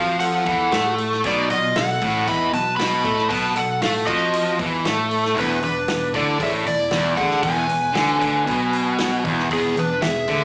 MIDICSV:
0, 0, Header, 1, 6, 480
1, 0, Start_track
1, 0, Tempo, 515907
1, 1158, Time_signature, 4, 2, 24, 8
1, 9713, End_track
2, 0, Start_track
2, 0, Title_t, "Electric slide guitar"
2, 0, Program_c, 0, 29
2, 0, Note_on_c, 0, 77, 92
2, 180, Note_off_c, 0, 77, 0
2, 184, Note_on_c, 0, 78, 86
2, 874, Note_off_c, 0, 78, 0
2, 1178, Note_on_c, 0, 74, 80
2, 1392, Note_off_c, 0, 74, 0
2, 1402, Note_on_c, 0, 75, 87
2, 1624, Note_off_c, 0, 75, 0
2, 1638, Note_on_c, 0, 78, 90
2, 2127, Note_on_c, 0, 83, 107
2, 2133, Note_off_c, 0, 78, 0
2, 2360, Note_off_c, 0, 83, 0
2, 2363, Note_on_c, 0, 81, 91
2, 2570, Note_off_c, 0, 81, 0
2, 2573, Note_on_c, 0, 83, 99
2, 3064, Note_off_c, 0, 83, 0
2, 3067, Note_on_c, 0, 81, 85
2, 3320, Note_off_c, 0, 81, 0
2, 3321, Note_on_c, 0, 78, 86
2, 3556, Note_off_c, 0, 78, 0
2, 3560, Note_on_c, 0, 77, 82
2, 3624, Note_off_c, 0, 77, 0
2, 3783, Note_on_c, 0, 75, 73
2, 4236, Note_off_c, 0, 75, 0
2, 5020, Note_on_c, 0, 71, 78
2, 5238, Note_off_c, 0, 71, 0
2, 5250, Note_on_c, 0, 71, 82
2, 5691, Note_off_c, 0, 71, 0
2, 5733, Note_on_c, 0, 74, 80
2, 5972, Note_off_c, 0, 74, 0
2, 5980, Note_on_c, 0, 76, 86
2, 6042, Note_off_c, 0, 76, 0
2, 6211, Note_on_c, 0, 74, 88
2, 6672, Note_on_c, 0, 78, 88
2, 6699, Note_off_c, 0, 74, 0
2, 6910, Note_off_c, 0, 78, 0
2, 6914, Note_on_c, 0, 80, 89
2, 8561, Note_off_c, 0, 80, 0
2, 8867, Note_on_c, 0, 68, 84
2, 9101, Note_off_c, 0, 68, 0
2, 9107, Note_on_c, 0, 71, 90
2, 9322, Note_on_c, 0, 76, 86
2, 9342, Note_off_c, 0, 71, 0
2, 9713, Note_off_c, 0, 76, 0
2, 9713, End_track
3, 0, Start_track
3, 0, Title_t, "Lead electric guitar"
3, 0, Program_c, 1, 29
3, 0, Note_on_c, 1, 66, 81
3, 162, Note_off_c, 1, 66, 0
3, 197, Note_on_c, 1, 69, 73
3, 880, Note_off_c, 1, 69, 0
3, 1185, Note_on_c, 1, 63, 72
3, 1396, Note_off_c, 1, 63, 0
3, 1420, Note_on_c, 1, 65, 69
3, 1633, Note_off_c, 1, 65, 0
3, 1664, Note_on_c, 1, 69, 75
3, 2098, Note_off_c, 1, 69, 0
3, 2119, Note_on_c, 1, 75, 87
3, 2342, Note_off_c, 1, 75, 0
3, 2366, Note_on_c, 1, 71, 77
3, 2586, Note_off_c, 1, 71, 0
3, 2601, Note_on_c, 1, 75, 85
3, 3046, Note_off_c, 1, 75, 0
3, 3057, Note_on_c, 1, 71, 80
3, 3290, Note_off_c, 1, 71, 0
3, 3309, Note_on_c, 1, 69, 69
3, 3537, Note_off_c, 1, 69, 0
3, 3551, Note_on_c, 1, 66, 69
3, 3617, Note_off_c, 1, 66, 0
3, 3790, Note_on_c, 1, 66, 61
3, 4240, Note_off_c, 1, 66, 0
3, 5032, Note_on_c, 1, 62, 67
3, 5229, Note_off_c, 1, 62, 0
3, 5240, Note_on_c, 1, 62, 65
3, 5686, Note_off_c, 1, 62, 0
3, 5721, Note_on_c, 1, 64, 66
3, 5943, Note_off_c, 1, 64, 0
3, 5952, Note_on_c, 1, 68, 71
3, 6018, Note_off_c, 1, 68, 0
3, 6201, Note_on_c, 1, 64, 77
3, 6647, Note_off_c, 1, 64, 0
3, 6677, Note_on_c, 1, 68, 76
3, 6901, Note_off_c, 1, 68, 0
3, 6921, Note_on_c, 1, 71, 79
3, 8565, Note_off_c, 1, 71, 0
3, 8885, Note_on_c, 1, 59, 73
3, 9088, Note_off_c, 1, 59, 0
3, 9121, Note_on_c, 1, 62, 72
3, 9326, Note_off_c, 1, 62, 0
3, 9366, Note_on_c, 1, 68, 82
3, 9713, Note_off_c, 1, 68, 0
3, 9713, End_track
4, 0, Start_track
4, 0, Title_t, "Distorted electric guitar"
4, 0, Program_c, 2, 30
4, 0, Note_on_c, 2, 53, 89
4, 423, Note_off_c, 2, 53, 0
4, 426, Note_on_c, 2, 52, 95
4, 665, Note_off_c, 2, 52, 0
4, 665, Note_on_c, 2, 57, 95
4, 1145, Note_off_c, 2, 57, 0
4, 1159, Note_on_c, 2, 47, 101
4, 1385, Note_off_c, 2, 47, 0
4, 1397, Note_on_c, 2, 47, 73
4, 1590, Note_off_c, 2, 47, 0
4, 1638, Note_on_c, 2, 47, 69
4, 1830, Note_off_c, 2, 47, 0
4, 1875, Note_on_c, 2, 45, 95
4, 2110, Note_off_c, 2, 45, 0
4, 2122, Note_on_c, 2, 52, 99
4, 2349, Note_off_c, 2, 52, 0
4, 2353, Note_on_c, 2, 47, 74
4, 2548, Note_off_c, 2, 47, 0
4, 2589, Note_on_c, 2, 47, 101
4, 2827, Note_off_c, 2, 47, 0
4, 2829, Note_on_c, 2, 57, 101
4, 3065, Note_on_c, 2, 47, 106
4, 3066, Note_off_c, 2, 57, 0
4, 3301, Note_off_c, 2, 47, 0
4, 3312, Note_on_c, 2, 47, 70
4, 3507, Note_off_c, 2, 47, 0
4, 3556, Note_on_c, 2, 57, 94
4, 3783, Note_on_c, 2, 53, 93
4, 3790, Note_off_c, 2, 57, 0
4, 4263, Note_off_c, 2, 53, 0
4, 4276, Note_on_c, 2, 52, 91
4, 4510, Note_off_c, 2, 52, 0
4, 4510, Note_on_c, 2, 57, 101
4, 4976, Note_on_c, 2, 40, 93
4, 4987, Note_off_c, 2, 57, 0
4, 5207, Note_off_c, 2, 40, 0
4, 5218, Note_on_c, 2, 40, 69
4, 5420, Note_off_c, 2, 40, 0
4, 5473, Note_on_c, 2, 40, 65
4, 5668, Note_off_c, 2, 40, 0
4, 5707, Note_on_c, 2, 50, 90
4, 5943, Note_off_c, 2, 50, 0
4, 5947, Note_on_c, 2, 45, 94
4, 6185, Note_off_c, 2, 45, 0
4, 6187, Note_on_c, 2, 40, 70
4, 6385, Note_off_c, 2, 40, 0
4, 6435, Note_on_c, 2, 40, 99
4, 6670, Note_off_c, 2, 40, 0
4, 6676, Note_on_c, 2, 50, 100
4, 6910, Note_off_c, 2, 50, 0
4, 6913, Note_on_c, 2, 40, 105
4, 7135, Note_off_c, 2, 40, 0
4, 7146, Note_on_c, 2, 40, 73
4, 7345, Note_off_c, 2, 40, 0
4, 7378, Note_on_c, 2, 50, 95
4, 7610, Note_off_c, 2, 50, 0
4, 7621, Note_on_c, 2, 50, 91
4, 7863, Note_off_c, 2, 50, 0
4, 7867, Note_on_c, 2, 47, 92
4, 8587, Note_off_c, 2, 47, 0
4, 8599, Note_on_c, 2, 40, 102
4, 8833, Note_off_c, 2, 40, 0
4, 8844, Note_on_c, 2, 40, 100
4, 9076, Note_off_c, 2, 40, 0
4, 9089, Note_on_c, 2, 40, 75
4, 9278, Note_off_c, 2, 40, 0
4, 9325, Note_on_c, 2, 40, 70
4, 9516, Note_off_c, 2, 40, 0
4, 9566, Note_on_c, 2, 50, 92
4, 9713, Note_off_c, 2, 50, 0
4, 9713, End_track
5, 0, Start_track
5, 0, Title_t, "Picked electric bass"
5, 0, Program_c, 3, 34
5, 0, Note_on_c, 3, 41, 88
5, 402, Note_off_c, 3, 41, 0
5, 432, Note_on_c, 3, 40, 88
5, 658, Note_off_c, 3, 40, 0
5, 672, Note_on_c, 3, 45, 90
5, 1122, Note_off_c, 3, 45, 0
5, 1153, Note_on_c, 3, 35, 94
5, 1379, Note_off_c, 3, 35, 0
5, 1399, Note_on_c, 3, 35, 81
5, 1622, Note_off_c, 3, 35, 0
5, 1636, Note_on_c, 3, 35, 76
5, 1860, Note_off_c, 3, 35, 0
5, 1875, Note_on_c, 3, 33, 91
5, 2100, Note_off_c, 3, 33, 0
5, 2115, Note_on_c, 3, 40, 92
5, 2340, Note_off_c, 3, 40, 0
5, 2355, Note_on_c, 3, 35, 74
5, 2580, Note_off_c, 3, 35, 0
5, 2595, Note_on_c, 3, 35, 97
5, 2820, Note_off_c, 3, 35, 0
5, 2831, Note_on_c, 3, 45, 89
5, 3058, Note_off_c, 3, 45, 0
5, 3074, Note_on_c, 3, 35, 86
5, 3299, Note_off_c, 3, 35, 0
5, 3309, Note_on_c, 3, 35, 77
5, 3536, Note_off_c, 3, 35, 0
5, 3543, Note_on_c, 3, 45, 84
5, 3773, Note_off_c, 3, 45, 0
5, 3796, Note_on_c, 3, 41, 87
5, 4243, Note_off_c, 3, 41, 0
5, 4272, Note_on_c, 3, 40, 86
5, 4498, Note_off_c, 3, 40, 0
5, 4517, Note_on_c, 3, 45, 89
5, 4964, Note_off_c, 3, 45, 0
5, 4994, Note_on_c, 3, 28, 88
5, 5219, Note_off_c, 3, 28, 0
5, 5229, Note_on_c, 3, 28, 72
5, 5456, Note_off_c, 3, 28, 0
5, 5473, Note_on_c, 3, 28, 77
5, 5699, Note_off_c, 3, 28, 0
5, 5709, Note_on_c, 3, 38, 83
5, 5937, Note_off_c, 3, 38, 0
5, 5951, Note_on_c, 3, 33, 93
5, 6170, Note_off_c, 3, 33, 0
5, 6175, Note_on_c, 3, 28, 71
5, 6409, Note_off_c, 3, 28, 0
5, 6423, Note_on_c, 3, 28, 87
5, 6654, Note_off_c, 3, 28, 0
5, 6671, Note_on_c, 3, 38, 91
5, 6898, Note_off_c, 3, 38, 0
5, 6910, Note_on_c, 3, 28, 89
5, 7137, Note_off_c, 3, 28, 0
5, 7152, Note_on_c, 3, 28, 76
5, 7378, Note_off_c, 3, 28, 0
5, 7387, Note_on_c, 3, 38, 88
5, 7616, Note_off_c, 3, 38, 0
5, 7643, Note_on_c, 3, 38, 92
5, 7865, Note_off_c, 3, 38, 0
5, 7883, Note_on_c, 3, 35, 93
5, 8565, Note_off_c, 3, 35, 0
5, 8601, Note_on_c, 3, 28, 86
5, 8825, Note_off_c, 3, 28, 0
5, 8845, Note_on_c, 3, 28, 94
5, 9067, Note_off_c, 3, 28, 0
5, 9080, Note_on_c, 3, 28, 76
5, 9304, Note_off_c, 3, 28, 0
5, 9323, Note_on_c, 3, 28, 77
5, 9546, Note_off_c, 3, 28, 0
5, 9565, Note_on_c, 3, 38, 91
5, 9713, Note_off_c, 3, 38, 0
5, 9713, End_track
6, 0, Start_track
6, 0, Title_t, "Drums"
6, 188, Note_on_c, 9, 46, 73
6, 281, Note_off_c, 9, 46, 0
6, 428, Note_on_c, 9, 46, 51
6, 433, Note_on_c, 9, 36, 106
6, 521, Note_off_c, 9, 46, 0
6, 526, Note_off_c, 9, 36, 0
6, 670, Note_on_c, 9, 46, 64
6, 674, Note_on_c, 9, 38, 101
6, 763, Note_off_c, 9, 46, 0
6, 767, Note_off_c, 9, 38, 0
6, 913, Note_on_c, 9, 46, 51
6, 1006, Note_off_c, 9, 46, 0
6, 1044, Note_on_c, 9, 38, 31
6, 1138, Note_off_c, 9, 38, 0
6, 1153, Note_on_c, 9, 46, 68
6, 1155, Note_on_c, 9, 36, 103
6, 1246, Note_off_c, 9, 46, 0
6, 1248, Note_off_c, 9, 36, 0
6, 1395, Note_on_c, 9, 46, 53
6, 1488, Note_off_c, 9, 46, 0
6, 1635, Note_on_c, 9, 46, 73
6, 1638, Note_on_c, 9, 38, 105
6, 1728, Note_off_c, 9, 46, 0
6, 1731, Note_off_c, 9, 38, 0
6, 1877, Note_on_c, 9, 36, 98
6, 1882, Note_on_c, 9, 46, 57
6, 1970, Note_off_c, 9, 36, 0
6, 1975, Note_off_c, 9, 46, 0
6, 2117, Note_on_c, 9, 36, 101
6, 2120, Note_on_c, 9, 46, 72
6, 2210, Note_off_c, 9, 36, 0
6, 2213, Note_off_c, 9, 46, 0
6, 2357, Note_on_c, 9, 46, 55
6, 2450, Note_off_c, 9, 46, 0
6, 2599, Note_on_c, 9, 46, 71
6, 2603, Note_on_c, 9, 38, 99
6, 2692, Note_off_c, 9, 46, 0
6, 2696, Note_off_c, 9, 38, 0
6, 2837, Note_on_c, 9, 36, 92
6, 2840, Note_on_c, 9, 46, 52
6, 2930, Note_off_c, 9, 36, 0
6, 2933, Note_off_c, 9, 46, 0
6, 2964, Note_on_c, 9, 38, 32
6, 3057, Note_off_c, 9, 38, 0
6, 3074, Note_on_c, 9, 46, 75
6, 3076, Note_on_c, 9, 36, 100
6, 3167, Note_off_c, 9, 46, 0
6, 3169, Note_off_c, 9, 36, 0
6, 3311, Note_on_c, 9, 46, 54
6, 3404, Note_off_c, 9, 46, 0
6, 3551, Note_on_c, 9, 46, 76
6, 3555, Note_on_c, 9, 38, 106
6, 3644, Note_off_c, 9, 46, 0
6, 3648, Note_off_c, 9, 38, 0
6, 3796, Note_on_c, 9, 36, 95
6, 3796, Note_on_c, 9, 46, 52
6, 3889, Note_off_c, 9, 36, 0
6, 3889, Note_off_c, 9, 46, 0
6, 4033, Note_on_c, 9, 46, 72
6, 4126, Note_off_c, 9, 46, 0
6, 4274, Note_on_c, 9, 36, 101
6, 4275, Note_on_c, 9, 46, 52
6, 4367, Note_off_c, 9, 36, 0
6, 4369, Note_off_c, 9, 46, 0
6, 4514, Note_on_c, 9, 46, 66
6, 4517, Note_on_c, 9, 38, 100
6, 4607, Note_off_c, 9, 46, 0
6, 4610, Note_off_c, 9, 38, 0
6, 4755, Note_on_c, 9, 46, 49
6, 4848, Note_off_c, 9, 46, 0
6, 4884, Note_on_c, 9, 38, 33
6, 4977, Note_off_c, 9, 38, 0
6, 4995, Note_on_c, 9, 36, 92
6, 5004, Note_on_c, 9, 46, 65
6, 5088, Note_off_c, 9, 36, 0
6, 5097, Note_off_c, 9, 46, 0
6, 5234, Note_on_c, 9, 46, 49
6, 5327, Note_off_c, 9, 46, 0
6, 5470, Note_on_c, 9, 46, 65
6, 5474, Note_on_c, 9, 38, 103
6, 5563, Note_off_c, 9, 46, 0
6, 5567, Note_off_c, 9, 38, 0
6, 5714, Note_on_c, 9, 36, 95
6, 5714, Note_on_c, 9, 46, 49
6, 5807, Note_off_c, 9, 36, 0
6, 5807, Note_off_c, 9, 46, 0
6, 5956, Note_on_c, 9, 36, 101
6, 5958, Note_on_c, 9, 46, 71
6, 6049, Note_off_c, 9, 36, 0
6, 6051, Note_off_c, 9, 46, 0
6, 6201, Note_on_c, 9, 46, 56
6, 6294, Note_off_c, 9, 46, 0
6, 6428, Note_on_c, 9, 46, 73
6, 6432, Note_on_c, 9, 38, 100
6, 6521, Note_off_c, 9, 46, 0
6, 6525, Note_off_c, 9, 38, 0
6, 6675, Note_on_c, 9, 36, 101
6, 6679, Note_on_c, 9, 46, 52
6, 6768, Note_off_c, 9, 36, 0
6, 6772, Note_off_c, 9, 46, 0
6, 6796, Note_on_c, 9, 38, 32
6, 6889, Note_off_c, 9, 38, 0
6, 6911, Note_on_c, 9, 46, 77
6, 6915, Note_on_c, 9, 36, 100
6, 7004, Note_off_c, 9, 46, 0
6, 7008, Note_off_c, 9, 36, 0
6, 7158, Note_on_c, 9, 46, 56
6, 7251, Note_off_c, 9, 46, 0
6, 7397, Note_on_c, 9, 46, 70
6, 7401, Note_on_c, 9, 38, 109
6, 7490, Note_off_c, 9, 46, 0
6, 7494, Note_off_c, 9, 38, 0
6, 7644, Note_on_c, 9, 36, 98
6, 7648, Note_on_c, 9, 46, 55
6, 7737, Note_off_c, 9, 36, 0
6, 7741, Note_off_c, 9, 46, 0
6, 7884, Note_on_c, 9, 36, 101
6, 7888, Note_on_c, 9, 46, 74
6, 7977, Note_off_c, 9, 36, 0
6, 7981, Note_off_c, 9, 46, 0
6, 8123, Note_on_c, 9, 46, 57
6, 8216, Note_off_c, 9, 46, 0
6, 8358, Note_on_c, 9, 46, 70
6, 8362, Note_on_c, 9, 38, 107
6, 8451, Note_off_c, 9, 46, 0
6, 8455, Note_off_c, 9, 38, 0
6, 8605, Note_on_c, 9, 36, 95
6, 8608, Note_on_c, 9, 46, 51
6, 8698, Note_off_c, 9, 36, 0
6, 8701, Note_off_c, 9, 46, 0
6, 8738, Note_on_c, 9, 38, 32
6, 8831, Note_off_c, 9, 38, 0
6, 8846, Note_on_c, 9, 46, 68
6, 8848, Note_on_c, 9, 36, 105
6, 8939, Note_off_c, 9, 46, 0
6, 8941, Note_off_c, 9, 36, 0
6, 9091, Note_on_c, 9, 46, 50
6, 9184, Note_off_c, 9, 46, 0
6, 9323, Note_on_c, 9, 46, 69
6, 9327, Note_on_c, 9, 38, 105
6, 9416, Note_off_c, 9, 46, 0
6, 9420, Note_off_c, 9, 38, 0
6, 9560, Note_on_c, 9, 46, 52
6, 9565, Note_on_c, 9, 36, 95
6, 9653, Note_off_c, 9, 46, 0
6, 9658, Note_off_c, 9, 36, 0
6, 9713, End_track
0, 0, End_of_file